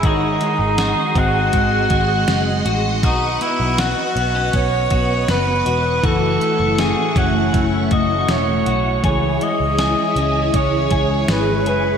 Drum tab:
HH |xxxxxxxx|xxxxxxxx|xxxxxxxx|xxxxxxxx|
SD |--o---o-|--o---o-|--o---o-|--o---o-|
BD |o--ooo--|o---oo--|o--ooo--|o---oo--|